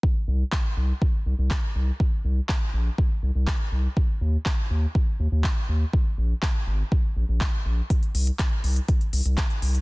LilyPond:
<<
  \new Staff \with { instrumentName = "Analog synth bass" } { \clef bass \time 4/4 \key c \minor \tempo 4 = 122 r8 c,16 r8. c,16 r8. c,16 c,16 r8 c,16 r16 | r8 c,16 r8. bes,,16 r8. c,16 c,16 r8 c,16 r16 | r8 ees,16 r8. ees,16 r8. ees,16 ees,16 r8 ees,16 r16 | r8 bes,,16 r8. aes,,16 r8. bes,,16 bes,,16 r8 bes,,16 r16 |
r8 c,16 r8. c,16 r8. c,16 c,16 r8 c,16 r16 | }
  \new DrumStaff \with { instrumentName = "Drums" } \drummode { \time 4/4 bd4 <hc bd>4 bd4 <hc bd>4 | bd4 <hc bd>4 bd4 <hc bd>4 | bd4 <hc bd>4 bd4 <hc bd>4 | bd4 <hc bd>4 bd4 <hc bd>4 |
<hh bd>16 hh16 hho16 hh16 <hc hh bd>8 hho16 hh16 <hh bd>16 hh16 hho16 hh16 <hc hh bd>16 hh16 hho16 hh16 | }
>>